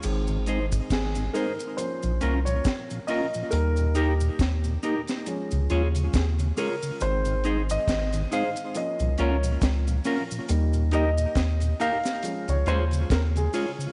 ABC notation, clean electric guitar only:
X:1
M:4/4
L:1/8
Q:"Swing 16ths" 1/4=69
K:Ab
V:1 name="Clean electric guitar"
z [EAc] z [EAc] z [DFB] z [DFB] | z [EGB] z [EGB] z [FAd] z [FAd] | z [EAc] z [EAc] z [DFB] z [DFB] | z [EGB] z [EGB] z [FAd] z [FAd] |]